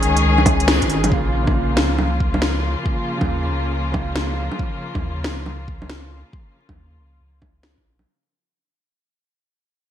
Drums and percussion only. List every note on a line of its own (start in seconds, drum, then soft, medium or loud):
0.03 open hi-hat medium
0.17 closed hi-hat medium
0.38 low bongo soft
0.46 kick loud
0.46 open hi-hat medium
0.46 low bongo medium
0.60 closed hi-hat medium
0.68 snare loud
0.68 closed hi-hat soft
0.82 kick medium
0.82 closed hi-hat soft
0.90 open hi-hat medium
1.04 closed hi-hat medium
1.04 low bongo medium
1.12 kick loud
1.47 kick loud
1.47 low bongo soft
1.77 snare loud
1.99 low bongo medium
2.20 kick loud
2.34 low bongo medium
2.42 snare loud
2.86 kick loud
3.21 kick loud
3.21 low bongo soft
3.94 kick loud
3.94 low bongo medium
4.16 snare loud
4.52 low bongo soft
4.59 kick loud
4.95 kick loud
4.95 low bongo soft
5.24 snare loud
5.46 low bongo soft
5.68 kick loud
5.82 low bongo medium
5.89 snare loud
6.33 kick loud
6.69 kick medium
6.69 low bongo soft
7.42 kick loud
7.42 low bongo medium
7.63 snare loud
7.78 kick medium
7.99 low bongo soft